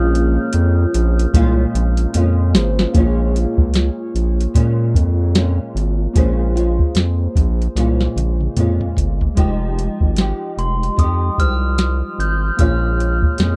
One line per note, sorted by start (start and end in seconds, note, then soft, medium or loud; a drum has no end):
0.00 0.38 A#1 loud
0.00 1.32 A#2 medium
0.00 1.63 F3 medium
0.00 1.34 G#3 medium
0.00 2.49 A#3 medium
0.00 1.35 C#4 medium
0.00 2.50 C#4 medium
0.00 1.36 F4 loud
0.00 2.50 F4 medium
0.00 2.51 G#4 medium
0.00 2.52 C#5 medium
0.00 2.11 F6 medium
0.15 closed hi-hat medium
0.53 0.86 F2 loud
0.53 closed hi-hat medium
0.94 1.26 A#1 loud
0.94 closed hi-hat medium
1.19 closed hi-hat soft
1.34 1.66 C2 loud
1.34 2.12 A#2 medium
1.34 2.14 G#3 loud
1.34 2.15 C#4 medium
1.34 2.16 F4 loud
1.34 kick medium
1.34 closed hi-hat medium
1.74 2.06 A#1 loud
1.74 closed hi-hat medium
1.97 closed hi-hat medium
2.13 2.55 F2 medium
2.13 2.92 A#2 medium
2.13 2.95 G#3 medium
2.13 2.97 C#4 medium
2.13 2.98 F4 medium
2.13 closed hi-hat medium
2.53 2.86 G#1 medium
2.53 2.91 A#3 medium
2.53 2.94 C#4 medium
2.53 2.93 F4 medium
2.53 2.95 G#4 medium
2.53 2.95 C5 medium
2.53 snare loud
2.53 closed hi-hat medium
2.79 snare medium
2.92 3.46 A#1 loud
2.92 4.53 A#2 medium
2.92 4.55 G#3 medium
2.92 6.11 A#3 medium
2.92 6.11 F4 medium
2.92 6.12 G#4 medium
2.92 kick loud
2.92 closed hi-hat medium
2.97 4.55 C#4 medium
2.97 4.57 F4 medium
2.97 6.13 C#5 medium
3.36 closed hi-hat medium
3.58 3.90 C#2 medium
3.58 kick medium
3.74 snare medium
3.74 closed hi-hat loud
4.15 4.47 A#1 medium
4.15 closed hi-hat medium
4.40 closed hi-hat soft
4.54 5.34 A#2 medium
4.54 4.96 A#2 loud
4.54 5.36 G#3 medium
4.54 5.36 C#4 medium
4.54 5.38 F4 medium
4.54 kick medium
4.54 closed hi-hat medium
4.95 5.59 F2 loud
4.95 kick medium
4.95 closed hi-hat medium
5.35 6.14 A#2 medium
5.35 6.16 G#3 medium
5.35 6.16 C#4 medium
5.35 6.17 F4 medium
5.35 snare loud
5.35 closed hi-hat medium
5.75 6.07 G#1 medium
5.75 closed hi-hat medium
6.13 6.80 A#1 loud
6.13 6.55 A#2 medium
6.13 6.56 G#3 medium
6.13 9.32 A#3 medium
6.13 6.56 C#4 medium
6.13 9.33 F4 medium
6.13 9.34 G#4 medium
6.13 kick loud
6.13 closed hi-hat medium
6.18 6.54 F4 medium
6.18 9.34 C5 medium
6.55 7.77 G#3 soft
6.55 7.77 C#4 soft
6.55 7.79 F4 medium
6.55 closed hi-hat medium
6.79 kick medium
6.95 7.28 F2 medium
6.95 snare loud
6.95 closed hi-hat medium
7.36 7.68 A#1 loud
7.36 kick medium
7.36 closed hi-hat medium
7.62 closed hi-hat soft
7.76 8.08 C2 loud
7.76 8.55 A#2 medium
7.76 8.57 G#3 medium
7.76 8.58 C#4 medium
7.76 8.59 F4 medium
7.76 snare soft
7.76 closed hi-hat medium
8.01 snare medium
8.16 8.48 A#1 medium
8.16 closed hi-hat medium
8.16 high tom medium
8.41 high tom medium
8.56 8.89 F2 medium
8.56 9.37 A#2 medium
8.56 9.37 G#3 medium
8.56 9.38 C#4 medium
8.56 9.38 F4 medium
8.56 closed hi-hat medium
8.56 mid tom medium
8.81 mid tom medium
8.97 9.29 G1 medium
8.97 closed hi-hat medium
8.97 floor tom medium
9.21 floor tom medium
9.35 9.88 F1 loud
9.35 10.17 F3 medium
9.35 11.33 G#3 medium
9.35 10.18 G#3 medium
9.35 10.18 D#4 medium
9.35 11.34 F4 medium
9.35 11.35 G4 medium
9.35 10.18 G4 medium
9.35 kick loud
9.35 closed hi-hat medium
9.39 11.35 D#5 medium
9.79 closed hi-hat medium
10.01 10.33 G#1 medium
10.01 kick medium
10.17 10.96 F3 medium
10.17 10.99 G#3 medium
10.17 10.99 D#4 medium
10.17 snare medium
10.17 closed hi-hat medium
10.21 11.00 G4 medium
10.58 10.90 F1 loud
10.58 11.00 C6 medium
10.58 closed hi-hat medium
10.83 closed hi-hat soft
10.96 11.30 F2 medium
10.96 13.56 F3 medium
10.96 12.59 G#3 medium
10.96 11.40 D#6 medium
10.96 kick medium
10.96 closed hi-hat medium
11.01 12.60 D#4 medium
11.01 12.60 G4 medium
11.38 12.02 C2 medium
11.38 11.46 G3 soft
11.38 12.57 F4 soft
11.38 12.59 G4 soft
11.38 12.60 C5 soft
11.38 12.22 F6 medium
11.38 kick medium
11.38 closed hi-hat medium
11.45 12.62 G#3 soft
11.78 snare loud
11.78 closed hi-hat medium
12.19 12.51 G#1 medium
12.19 12.61 G6 medium
12.19 closed hi-hat medium
12.57 13.23 A#1 loud
12.57 13.37 A#2 medium
12.57 13.39 G#3 medium
12.57 13.56 A#3 medium
12.57 13.40 C#4 medium
12.57 13.56 F4 medium
12.57 13.42 F4 medium
12.57 13.56 G#4 medium
12.57 13.56 F6 medium
12.57 kick loud
12.57 closed hi-hat medium
12.62 13.56 C#5 medium
13.00 closed hi-hat medium
13.23 kick medium
13.38 13.56 F2 medium
13.38 13.56 A#2 medium
13.38 13.56 G#3 medium
13.38 13.56 C#4 medium
13.38 13.56 F4 medium
13.38 snare medium
13.38 closed hi-hat medium